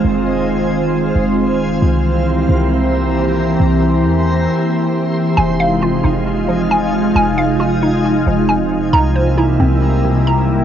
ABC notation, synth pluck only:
X:1
M:4/4
L:1/8
Q:1/4=135
K:Fm
V:1 name="Synth pluck"
z8 | z8 | z8 | a f F E2 F, a2 |
a f F E2 F, a2 | b c =E C2 C, b2 |]